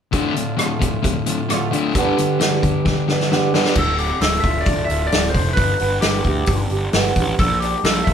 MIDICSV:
0, 0, Header, 1, 6, 480
1, 0, Start_track
1, 0, Key_signature, -1, "minor"
1, 0, Tempo, 453858
1, 136, Time_signature, 4, 2, 24, 8
1, 8604, End_track
2, 0, Start_track
2, 0, Title_t, "Lead electric guitar"
2, 0, Program_c, 0, 29
2, 4008, Note_on_c, 0, 69, 84
2, 4214, Note_off_c, 0, 69, 0
2, 4218, Note_on_c, 0, 67, 74
2, 4456, Note_off_c, 0, 67, 0
2, 4460, Note_on_c, 0, 69, 85
2, 4656, Note_on_c, 0, 76, 88
2, 4705, Note_off_c, 0, 69, 0
2, 4871, Note_on_c, 0, 74, 91
2, 4923, Note_off_c, 0, 76, 0
2, 5124, Note_off_c, 0, 74, 0
2, 5131, Note_on_c, 0, 76, 76
2, 5360, Note_on_c, 0, 74, 94
2, 5401, Note_off_c, 0, 76, 0
2, 5599, Note_off_c, 0, 74, 0
2, 5603, Note_on_c, 0, 72, 70
2, 5848, Note_off_c, 0, 72, 0
2, 5852, Note_on_c, 0, 71, 87
2, 6318, Note_off_c, 0, 71, 0
2, 6358, Note_on_c, 0, 67, 69
2, 7043, Note_off_c, 0, 67, 0
2, 7821, Note_on_c, 0, 69, 98
2, 8032, Note_off_c, 0, 69, 0
2, 8036, Note_on_c, 0, 67, 77
2, 8292, Note_off_c, 0, 67, 0
2, 8297, Note_on_c, 0, 69, 83
2, 8507, Note_on_c, 0, 76, 83
2, 8543, Note_off_c, 0, 69, 0
2, 8604, Note_off_c, 0, 76, 0
2, 8604, End_track
3, 0, Start_track
3, 0, Title_t, "Steel-string acoustic guitar"
3, 0, Program_c, 1, 25
3, 124, Note_on_c, 1, 38, 68
3, 132, Note_on_c, 1, 45, 71
3, 148, Note_on_c, 1, 50, 74
3, 150, Note_on_c, 1, 57, 78
3, 161, Note_on_c, 1, 65, 80
3, 597, Note_off_c, 1, 45, 0
3, 609, Note_on_c, 1, 45, 60
3, 611, Note_off_c, 1, 50, 0
3, 622, Note_off_c, 1, 57, 0
3, 623, Note_on_c, 1, 50, 59
3, 635, Note_on_c, 1, 57, 61
3, 636, Note_off_c, 1, 65, 0
3, 648, Note_on_c, 1, 65, 71
3, 851, Note_off_c, 1, 38, 0
3, 1330, Note_off_c, 1, 65, 0
3, 1343, Note_on_c, 1, 65, 57
3, 1353, Note_off_c, 1, 57, 0
3, 1359, Note_off_c, 1, 50, 0
3, 1366, Note_on_c, 1, 57, 53
3, 1371, Note_on_c, 1, 50, 48
3, 1573, Note_off_c, 1, 45, 0
3, 1581, Note_on_c, 1, 38, 74
3, 1585, Note_off_c, 1, 50, 0
3, 1593, Note_on_c, 1, 45, 81
3, 1594, Note_off_c, 1, 57, 0
3, 1598, Note_on_c, 1, 50, 79
3, 1600, Note_off_c, 1, 65, 0
3, 1607, Note_on_c, 1, 57, 82
3, 1612, Note_on_c, 1, 65, 83
3, 1797, Note_off_c, 1, 65, 0
3, 1810, Note_on_c, 1, 65, 62
3, 1818, Note_off_c, 1, 57, 0
3, 1830, Note_on_c, 1, 57, 57
3, 1833, Note_off_c, 1, 50, 0
3, 1846, Note_on_c, 1, 50, 52
3, 2039, Note_off_c, 1, 65, 0
3, 2045, Note_off_c, 1, 38, 0
3, 2049, Note_off_c, 1, 57, 0
3, 2051, Note_off_c, 1, 45, 0
3, 2057, Note_off_c, 1, 50, 0
3, 2067, Note_on_c, 1, 43, 81
3, 2083, Note_on_c, 1, 50, 80
3, 2084, Note_on_c, 1, 55, 77
3, 2087, Note_on_c, 1, 59, 77
3, 2099, Note_on_c, 1, 62, 77
3, 2107, Note_on_c, 1, 67, 93
3, 2530, Note_off_c, 1, 55, 0
3, 2543, Note_off_c, 1, 59, 0
3, 2543, Note_on_c, 1, 55, 67
3, 2545, Note_off_c, 1, 62, 0
3, 2555, Note_on_c, 1, 59, 70
3, 2558, Note_on_c, 1, 62, 67
3, 2563, Note_off_c, 1, 67, 0
3, 2576, Note_on_c, 1, 67, 68
3, 2782, Note_off_c, 1, 43, 0
3, 2790, Note_off_c, 1, 50, 0
3, 3239, Note_off_c, 1, 67, 0
3, 3252, Note_on_c, 1, 67, 55
3, 3262, Note_off_c, 1, 62, 0
3, 3264, Note_off_c, 1, 59, 0
3, 3271, Note_off_c, 1, 55, 0
3, 3275, Note_on_c, 1, 62, 47
3, 3277, Note_on_c, 1, 59, 49
3, 3284, Note_on_c, 1, 55, 42
3, 3490, Note_off_c, 1, 55, 0
3, 3490, Note_on_c, 1, 43, 71
3, 3497, Note_off_c, 1, 59, 0
3, 3497, Note_on_c, 1, 50, 79
3, 3502, Note_off_c, 1, 62, 0
3, 3503, Note_on_c, 1, 55, 76
3, 3509, Note_off_c, 1, 67, 0
3, 3510, Note_on_c, 1, 59, 79
3, 3515, Note_on_c, 1, 62, 78
3, 3522, Note_on_c, 1, 67, 82
3, 3713, Note_off_c, 1, 67, 0
3, 3726, Note_on_c, 1, 67, 59
3, 3729, Note_off_c, 1, 62, 0
3, 3741, Note_on_c, 1, 62, 54
3, 3742, Note_off_c, 1, 59, 0
3, 3754, Note_off_c, 1, 55, 0
3, 3754, Note_on_c, 1, 59, 58
3, 3767, Note_on_c, 1, 55, 49
3, 3956, Note_off_c, 1, 67, 0
3, 3959, Note_off_c, 1, 43, 0
3, 3962, Note_off_c, 1, 50, 0
3, 3964, Note_off_c, 1, 62, 0
3, 3971, Note_off_c, 1, 59, 0
3, 3977, Note_off_c, 1, 55, 0
3, 3991, Note_on_c, 1, 38, 66
3, 4226, Note_on_c, 1, 50, 59
3, 4472, Note_on_c, 1, 57, 55
3, 4702, Note_on_c, 1, 65, 64
3, 4948, Note_off_c, 1, 57, 0
3, 4960, Note_on_c, 1, 57, 60
3, 5177, Note_off_c, 1, 65, 0
3, 5182, Note_off_c, 1, 38, 0
3, 5190, Note_on_c, 1, 65, 50
3, 5416, Note_off_c, 1, 50, 0
3, 5429, Note_on_c, 1, 50, 64
3, 5667, Note_on_c, 1, 45, 63
3, 5901, Note_off_c, 1, 45, 0
3, 5902, Note_off_c, 1, 50, 0
3, 5902, Note_off_c, 1, 65, 0
3, 5907, Note_off_c, 1, 57, 0
3, 5907, Note_on_c, 1, 43, 72
3, 6138, Note_on_c, 1, 59, 57
3, 6383, Note_on_c, 1, 62, 53
3, 6637, Note_on_c, 1, 67, 62
3, 6852, Note_off_c, 1, 62, 0
3, 6864, Note_on_c, 1, 62, 62
3, 7095, Note_off_c, 1, 67, 0
3, 7100, Note_off_c, 1, 43, 0
3, 7107, Note_on_c, 1, 67, 54
3, 7335, Note_off_c, 1, 59, 0
3, 7351, Note_on_c, 1, 59, 61
3, 7595, Note_on_c, 1, 55, 62
3, 7819, Note_off_c, 1, 62, 0
3, 7820, Note_off_c, 1, 67, 0
3, 7822, Note_off_c, 1, 59, 0
3, 7824, Note_off_c, 1, 55, 0
3, 7831, Note_on_c, 1, 46, 69
3, 8078, Note_on_c, 1, 62, 58
3, 8317, Note_on_c, 1, 65, 57
3, 8604, Note_off_c, 1, 46, 0
3, 8604, Note_off_c, 1, 62, 0
3, 8604, Note_off_c, 1, 65, 0
3, 8604, End_track
4, 0, Start_track
4, 0, Title_t, "Distorted electric guitar"
4, 0, Program_c, 2, 30
4, 124, Note_on_c, 2, 38, 75
4, 136, Note_on_c, 2, 45, 72
4, 141, Note_on_c, 2, 50, 84
4, 346, Note_off_c, 2, 38, 0
4, 354, Note_off_c, 2, 45, 0
4, 359, Note_on_c, 2, 38, 52
4, 364, Note_off_c, 2, 50, 0
4, 366, Note_on_c, 2, 45, 51
4, 584, Note_off_c, 2, 38, 0
4, 588, Note_off_c, 2, 45, 0
4, 602, Note_on_c, 2, 38, 49
4, 610, Note_on_c, 2, 45, 67
4, 825, Note_off_c, 2, 38, 0
4, 830, Note_off_c, 2, 45, 0
4, 840, Note_on_c, 2, 38, 56
4, 847, Note_on_c, 2, 45, 59
4, 1064, Note_off_c, 2, 38, 0
4, 1068, Note_off_c, 2, 45, 0
4, 1085, Note_on_c, 2, 38, 66
4, 1090, Note_on_c, 2, 45, 65
4, 1307, Note_off_c, 2, 38, 0
4, 1309, Note_off_c, 2, 45, 0
4, 1330, Note_on_c, 2, 45, 61
4, 1331, Note_on_c, 2, 38, 54
4, 1550, Note_off_c, 2, 38, 0
4, 1550, Note_off_c, 2, 45, 0
4, 1573, Note_on_c, 2, 38, 47
4, 1579, Note_on_c, 2, 45, 64
4, 1791, Note_off_c, 2, 38, 0
4, 1794, Note_off_c, 2, 45, 0
4, 1809, Note_on_c, 2, 38, 65
4, 1818, Note_on_c, 2, 45, 76
4, 1827, Note_on_c, 2, 50, 84
4, 2038, Note_off_c, 2, 38, 0
4, 2043, Note_off_c, 2, 45, 0
4, 2048, Note_off_c, 2, 50, 0
4, 2052, Note_on_c, 2, 43, 72
4, 2059, Note_on_c, 2, 50, 73
4, 2067, Note_on_c, 2, 55, 95
4, 2280, Note_off_c, 2, 43, 0
4, 2283, Note_off_c, 2, 50, 0
4, 2288, Note_off_c, 2, 55, 0
4, 2296, Note_on_c, 2, 43, 55
4, 2303, Note_on_c, 2, 50, 62
4, 2513, Note_off_c, 2, 43, 0
4, 2516, Note_off_c, 2, 50, 0
4, 2527, Note_on_c, 2, 43, 58
4, 2535, Note_on_c, 2, 50, 64
4, 2748, Note_off_c, 2, 43, 0
4, 2752, Note_off_c, 2, 50, 0
4, 2775, Note_on_c, 2, 43, 58
4, 2776, Note_on_c, 2, 50, 59
4, 2992, Note_off_c, 2, 43, 0
4, 2993, Note_off_c, 2, 50, 0
4, 3018, Note_on_c, 2, 50, 71
4, 3020, Note_on_c, 2, 43, 59
4, 3233, Note_off_c, 2, 50, 0
4, 3234, Note_off_c, 2, 43, 0
4, 3256, Note_on_c, 2, 43, 57
4, 3262, Note_on_c, 2, 50, 62
4, 3472, Note_off_c, 2, 43, 0
4, 3475, Note_off_c, 2, 50, 0
4, 3503, Note_on_c, 2, 43, 59
4, 3510, Note_on_c, 2, 50, 67
4, 3716, Note_off_c, 2, 43, 0
4, 3719, Note_off_c, 2, 50, 0
4, 3743, Note_on_c, 2, 43, 77
4, 3747, Note_on_c, 2, 50, 70
4, 3749, Note_on_c, 2, 55, 83
4, 3965, Note_off_c, 2, 43, 0
4, 3967, Note_off_c, 2, 50, 0
4, 3968, Note_off_c, 2, 55, 0
4, 8604, End_track
5, 0, Start_track
5, 0, Title_t, "Picked electric bass"
5, 0, Program_c, 3, 34
5, 3972, Note_on_c, 3, 26, 71
5, 4343, Note_off_c, 3, 26, 0
5, 4448, Note_on_c, 3, 26, 80
5, 4635, Note_off_c, 3, 26, 0
5, 4693, Note_on_c, 3, 26, 80
5, 4878, Note_off_c, 3, 26, 0
5, 4932, Note_on_c, 3, 26, 82
5, 5118, Note_off_c, 3, 26, 0
5, 5174, Note_on_c, 3, 26, 75
5, 5359, Note_off_c, 3, 26, 0
5, 5430, Note_on_c, 3, 26, 74
5, 5608, Note_off_c, 3, 26, 0
5, 5646, Note_on_c, 3, 29, 76
5, 5834, Note_off_c, 3, 29, 0
5, 5887, Note_on_c, 3, 31, 77
5, 6074, Note_off_c, 3, 31, 0
5, 6145, Note_on_c, 3, 31, 71
5, 6325, Note_off_c, 3, 31, 0
5, 6381, Note_on_c, 3, 31, 73
5, 6563, Note_off_c, 3, 31, 0
5, 6607, Note_on_c, 3, 38, 77
5, 6794, Note_off_c, 3, 38, 0
5, 6853, Note_on_c, 3, 31, 75
5, 7038, Note_off_c, 3, 31, 0
5, 7082, Note_on_c, 3, 31, 74
5, 7271, Note_off_c, 3, 31, 0
5, 7335, Note_on_c, 3, 31, 71
5, 7519, Note_off_c, 3, 31, 0
5, 7566, Note_on_c, 3, 33, 77
5, 7754, Note_off_c, 3, 33, 0
5, 7811, Note_on_c, 3, 34, 83
5, 8181, Note_off_c, 3, 34, 0
5, 8291, Note_on_c, 3, 34, 84
5, 8476, Note_off_c, 3, 34, 0
5, 8536, Note_on_c, 3, 34, 77
5, 8604, Note_off_c, 3, 34, 0
5, 8604, End_track
6, 0, Start_track
6, 0, Title_t, "Drums"
6, 136, Note_on_c, 9, 36, 76
6, 138, Note_on_c, 9, 42, 61
6, 242, Note_off_c, 9, 36, 0
6, 244, Note_off_c, 9, 42, 0
6, 385, Note_on_c, 9, 42, 50
6, 490, Note_off_c, 9, 42, 0
6, 620, Note_on_c, 9, 42, 68
6, 625, Note_on_c, 9, 37, 85
6, 726, Note_off_c, 9, 42, 0
6, 731, Note_off_c, 9, 37, 0
6, 863, Note_on_c, 9, 36, 73
6, 865, Note_on_c, 9, 42, 57
6, 969, Note_off_c, 9, 36, 0
6, 970, Note_off_c, 9, 42, 0
6, 1102, Note_on_c, 9, 36, 74
6, 1105, Note_on_c, 9, 42, 66
6, 1208, Note_off_c, 9, 36, 0
6, 1211, Note_off_c, 9, 42, 0
6, 1336, Note_on_c, 9, 42, 55
6, 1442, Note_off_c, 9, 42, 0
6, 1584, Note_on_c, 9, 42, 69
6, 1589, Note_on_c, 9, 37, 84
6, 1689, Note_off_c, 9, 42, 0
6, 1695, Note_off_c, 9, 37, 0
6, 1831, Note_on_c, 9, 42, 47
6, 1936, Note_off_c, 9, 42, 0
6, 2061, Note_on_c, 9, 42, 67
6, 2063, Note_on_c, 9, 36, 88
6, 2166, Note_off_c, 9, 42, 0
6, 2169, Note_off_c, 9, 36, 0
6, 2309, Note_on_c, 9, 42, 55
6, 2415, Note_off_c, 9, 42, 0
6, 2543, Note_on_c, 9, 42, 71
6, 2549, Note_on_c, 9, 38, 92
6, 2649, Note_off_c, 9, 42, 0
6, 2654, Note_off_c, 9, 38, 0
6, 2784, Note_on_c, 9, 36, 73
6, 2788, Note_on_c, 9, 42, 49
6, 2889, Note_off_c, 9, 36, 0
6, 2894, Note_off_c, 9, 42, 0
6, 3023, Note_on_c, 9, 36, 82
6, 3027, Note_on_c, 9, 38, 41
6, 3129, Note_off_c, 9, 36, 0
6, 3133, Note_off_c, 9, 38, 0
6, 3265, Note_on_c, 9, 38, 57
6, 3370, Note_off_c, 9, 38, 0
6, 3388, Note_on_c, 9, 38, 47
6, 3494, Note_off_c, 9, 38, 0
6, 3511, Note_on_c, 9, 38, 60
6, 3617, Note_off_c, 9, 38, 0
6, 3744, Note_on_c, 9, 38, 65
6, 3850, Note_off_c, 9, 38, 0
6, 3860, Note_on_c, 9, 38, 65
6, 3966, Note_off_c, 9, 38, 0
6, 3970, Note_on_c, 9, 49, 73
6, 3976, Note_on_c, 9, 36, 94
6, 4075, Note_off_c, 9, 49, 0
6, 4082, Note_off_c, 9, 36, 0
6, 4213, Note_on_c, 9, 46, 43
6, 4319, Note_off_c, 9, 46, 0
6, 4456, Note_on_c, 9, 46, 61
6, 4461, Note_on_c, 9, 38, 88
6, 4561, Note_off_c, 9, 46, 0
6, 4567, Note_off_c, 9, 38, 0
6, 4691, Note_on_c, 9, 46, 41
6, 4693, Note_on_c, 9, 36, 69
6, 4797, Note_off_c, 9, 46, 0
6, 4799, Note_off_c, 9, 36, 0
6, 4925, Note_on_c, 9, 46, 50
6, 4933, Note_on_c, 9, 36, 84
6, 5030, Note_off_c, 9, 46, 0
6, 5038, Note_off_c, 9, 36, 0
6, 5179, Note_on_c, 9, 46, 46
6, 5284, Note_off_c, 9, 46, 0
6, 5417, Note_on_c, 9, 46, 56
6, 5423, Note_on_c, 9, 38, 92
6, 5523, Note_off_c, 9, 46, 0
6, 5528, Note_off_c, 9, 38, 0
6, 5653, Note_on_c, 9, 36, 68
6, 5655, Note_on_c, 9, 46, 44
6, 5759, Note_off_c, 9, 36, 0
6, 5760, Note_off_c, 9, 46, 0
6, 5892, Note_on_c, 9, 46, 53
6, 5893, Note_on_c, 9, 36, 90
6, 5998, Note_off_c, 9, 46, 0
6, 5999, Note_off_c, 9, 36, 0
6, 6129, Note_on_c, 9, 46, 43
6, 6235, Note_off_c, 9, 46, 0
6, 6366, Note_on_c, 9, 46, 60
6, 6372, Note_on_c, 9, 38, 91
6, 6472, Note_off_c, 9, 46, 0
6, 6477, Note_off_c, 9, 38, 0
6, 6599, Note_on_c, 9, 46, 39
6, 6608, Note_on_c, 9, 36, 63
6, 6705, Note_off_c, 9, 46, 0
6, 6714, Note_off_c, 9, 36, 0
6, 6834, Note_on_c, 9, 46, 50
6, 6848, Note_on_c, 9, 36, 91
6, 6940, Note_off_c, 9, 46, 0
6, 6954, Note_off_c, 9, 36, 0
6, 7084, Note_on_c, 9, 46, 37
6, 7190, Note_off_c, 9, 46, 0
6, 7328, Note_on_c, 9, 46, 56
6, 7333, Note_on_c, 9, 38, 92
6, 7434, Note_off_c, 9, 46, 0
6, 7439, Note_off_c, 9, 38, 0
6, 7569, Note_on_c, 9, 46, 42
6, 7573, Note_on_c, 9, 36, 67
6, 7675, Note_off_c, 9, 46, 0
6, 7679, Note_off_c, 9, 36, 0
6, 7814, Note_on_c, 9, 46, 54
6, 7816, Note_on_c, 9, 36, 90
6, 7920, Note_off_c, 9, 46, 0
6, 7921, Note_off_c, 9, 36, 0
6, 8060, Note_on_c, 9, 46, 41
6, 8166, Note_off_c, 9, 46, 0
6, 8297, Note_on_c, 9, 46, 59
6, 8302, Note_on_c, 9, 38, 91
6, 8403, Note_off_c, 9, 46, 0
6, 8408, Note_off_c, 9, 38, 0
6, 8537, Note_on_c, 9, 36, 72
6, 8538, Note_on_c, 9, 46, 46
6, 8604, Note_off_c, 9, 36, 0
6, 8604, Note_off_c, 9, 46, 0
6, 8604, End_track
0, 0, End_of_file